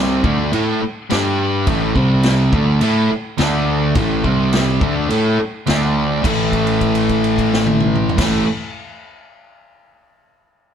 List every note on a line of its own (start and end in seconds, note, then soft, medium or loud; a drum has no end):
0.00 0.20 C2 loud
0.00 0.23 C3 medium
0.00 0.24 G3 loud
0.00 0.25 C4 loud
0.24 0.51 D2 loud
0.24 0.52 D3 medium
0.24 0.51 A3 medium
0.24 0.53 D4 loud
0.24 kick loud
0.52 0.80 A2 loud
0.52 0.80 A3 loud
0.52 0.81 E4 loud
0.52 0.81 A4 loud
0.52 crash medium
0.81 muted distorted electric guitar stroke medium
0.81 muted picked electric bass stroke soft
1.10 1.64 G2 loud
1.10 1.66 G3 medium
1.10 1.67 D4 loud
1.10 1.67 G4 loud
1.10 snare loud
1.10 crash medium
1.67 1.94 A1 loud
1.67 1.95 A2 medium
1.67 1.95 E3 medium
1.67 1.96 A3 loud
1.67 kick loud
1.67 crash medium
1.95 2.49 C2 medium
1.95 2.52 C3 medium
1.95 2.53 G3 loud
1.95 2.53 C4 loud
1.95 kick medium
2.23 snare loud
2.23 crash medium
2.53 2.80 D2 loud
2.53 2.81 D3 medium
2.53 2.80 A3 loud
2.53 2.81 D4 medium
2.53 kick loud
2.81 3.08 A2 loud
2.81 3.09 A3 loud
2.81 3.10 E4 loud
2.81 3.10 A4 loud
2.81 crash medium
3.10 muted distorted electric guitar stroke medium
3.10 muted picked electric bass stroke soft
3.38 3.93 D2 loud
3.38 3.95 D3 medium
3.38 3.96 A3 loud
3.38 3.96 D4 medium
3.38 snare loud
3.38 crash medium
3.95 4.23 A1 loud
3.95 4.23 A2 medium
3.95 4.24 E3 medium
3.95 4.25 A3 loud
3.95 kick loud
3.95 crash medium
4.24 4.78 C2 loud
4.24 4.81 C3 medium
4.24 4.81 G3 loud
4.24 4.81 C4 loud
4.24 kick medium
4.53 snare loud
4.53 crash medium
4.81 5.08 D2 medium
4.81 5.09 D3 medium
4.81 5.07 A3 loud
4.81 5.09 D4 loud
4.81 kick loud
5.09 5.38 A2 medium
5.09 5.37 A3 loud
5.09 5.38 E4 loud
5.09 5.38 A4 loud
5.09 crash medium
5.38 muted distorted electric guitar stroke medium
5.38 muted picked electric bass stroke soft
5.66 6.22 D2 loud
5.66 6.23 D3 medium
5.66 6.24 A3 medium
5.66 6.24 D4 loud
5.66 snare loud
5.66 crash medium
6.23 8.08 A1 loud
6.23 8.17 A2 medium
6.23 8.19 E3 medium
6.23 8.21 A3 loud
6.23 kick loud
6.23 crash medium
6.53 kick medium
6.53 crash soft
6.67 crash soft
6.81 kick medium
6.81 crash medium
6.95 crash medium
7.09 kick medium
7.09 crash medium
7.24 crash soft
7.38 kick medium
7.38 crash medium
7.54 snare medium
7.66 high tom loud
7.80 mid tom loud
7.95 mid tom loud
8.09 floor tom loud
8.17 8.42 A1 loud
8.17 8.44 A2 medium
8.17 8.45 E3 loud
8.17 kick loud
8.17 snare loud
8.17 crash loud
8.21 8.46 A3 loud